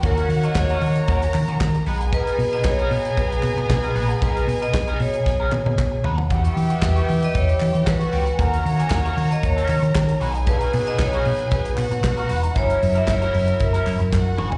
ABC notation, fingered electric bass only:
X:1
M:4/4
L:1/16
Q:1/4=115
K:B
V:1 name="Fingered electric bass" clef=bass
D,,2 D,2 D,,2 D,2 D,,2 D, D, D,2 B,,,2- | B,,,2 B,,2 B,,,2 B,,2 B,,,2 B,, B,, B,,2 A,,,2 | B,,,2 B,,2 B,,,2 B,,2 B,,,2 B,, B,, B,,2 D,,2 | E,,2 E,2 E,,2 E,2 E,,2 E, E, E,2 C,,2 |
D,,2 D,2 D,,2 D,2 D,,2 D, D, D,2 B,,,2- | B,,,2 B,,2 B,,,2 B,,2 B,,,2 B,, B,, B,,2 E,,,2 | F,,,2 F,,2 F,,,2 F,,2 F,,,2 F,, F,, F,,2 F,,,2 |]